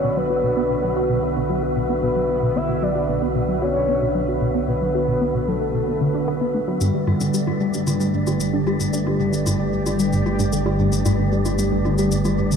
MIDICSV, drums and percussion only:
0, 0, Header, 1, 2, 480
1, 0, Start_track
1, 0, Tempo, 530973
1, 396, Time_signature, 4, 2, 24, 8
1, 11359, End_track
2, 0, Start_track
2, 0, Title_t, "Drums"
2, 6155, Note_on_c, 9, 69, 66
2, 6246, Note_off_c, 9, 69, 0
2, 6395, Note_on_c, 9, 63, 43
2, 6485, Note_off_c, 9, 63, 0
2, 6515, Note_on_c, 9, 69, 52
2, 6605, Note_off_c, 9, 69, 0
2, 6635, Note_on_c, 9, 69, 67
2, 6725, Note_off_c, 9, 69, 0
2, 6755, Note_on_c, 9, 63, 46
2, 6846, Note_off_c, 9, 63, 0
2, 6996, Note_on_c, 9, 69, 52
2, 7086, Note_off_c, 9, 69, 0
2, 7116, Note_on_c, 9, 63, 46
2, 7116, Note_on_c, 9, 69, 64
2, 7206, Note_off_c, 9, 63, 0
2, 7206, Note_off_c, 9, 69, 0
2, 7236, Note_on_c, 9, 69, 36
2, 7327, Note_off_c, 9, 69, 0
2, 7476, Note_on_c, 9, 63, 45
2, 7476, Note_on_c, 9, 69, 50
2, 7566, Note_off_c, 9, 63, 0
2, 7566, Note_off_c, 9, 69, 0
2, 7596, Note_on_c, 9, 69, 65
2, 7687, Note_off_c, 9, 69, 0
2, 7836, Note_on_c, 9, 63, 47
2, 7926, Note_off_c, 9, 63, 0
2, 7957, Note_on_c, 9, 69, 55
2, 8047, Note_off_c, 9, 69, 0
2, 8077, Note_on_c, 9, 69, 68
2, 8168, Note_off_c, 9, 69, 0
2, 8197, Note_on_c, 9, 63, 45
2, 8287, Note_off_c, 9, 63, 0
2, 8437, Note_on_c, 9, 69, 54
2, 8527, Note_off_c, 9, 69, 0
2, 8557, Note_on_c, 9, 63, 48
2, 8557, Note_on_c, 9, 69, 73
2, 8647, Note_off_c, 9, 63, 0
2, 8647, Note_off_c, 9, 69, 0
2, 8916, Note_on_c, 9, 63, 47
2, 8916, Note_on_c, 9, 69, 55
2, 9007, Note_off_c, 9, 63, 0
2, 9007, Note_off_c, 9, 69, 0
2, 9036, Note_on_c, 9, 69, 70
2, 9126, Note_off_c, 9, 69, 0
2, 9156, Note_on_c, 9, 69, 37
2, 9246, Note_off_c, 9, 69, 0
2, 9276, Note_on_c, 9, 63, 46
2, 9366, Note_off_c, 9, 63, 0
2, 9397, Note_on_c, 9, 69, 54
2, 9487, Note_off_c, 9, 69, 0
2, 9516, Note_on_c, 9, 69, 67
2, 9606, Note_off_c, 9, 69, 0
2, 9636, Note_on_c, 9, 63, 47
2, 9726, Note_off_c, 9, 63, 0
2, 9876, Note_on_c, 9, 69, 54
2, 9966, Note_off_c, 9, 69, 0
2, 9995, Note_on_c, 9, 63, 47
2, 9995, Note_on_c, 9, 69, 70
2, 10085, Note_off_c, 9, 63, 0
2, 10085, Note_off_c, 9, 69, 0
2, 10355, Note_on_c, 9, 63, 44
2, 10355, Note_on_c, 9, 69, 54
2, 10445, Note_off_c, 9, 63, 0
2, 10445, Note_off_c, 9, 69, 0
2, 10474, Note_on_c, 9, 69, 69
2, 10564, Note_off_c, 9, 69, 0
2, 10714, Note_on_c, 9, 63, 45
2, 10805, Note_off_c, 9, 63, 0
2, 10834, Note_on_c, 9, 69, 56
2, 10924, Note_off_c, 9, 69, 0
2, 10953, Note_on_c, 9, 69, 70
2, 11044, Note_off_c, 9, 69, 0
2, 11074, Note_on_c, 9, 63, 45
2, 11074, Note_on_c, 9, 69, 36
2, 11164, Note_off_c, 9, 63, 0
2, 11164, Note_off_c, 9, 69, 0
2, 11315, Note_on_c, 9, 69, 56
2, 11359, Note_off_c, 9, 69, 0
2, 11359, End_track
0, 0, End_of_file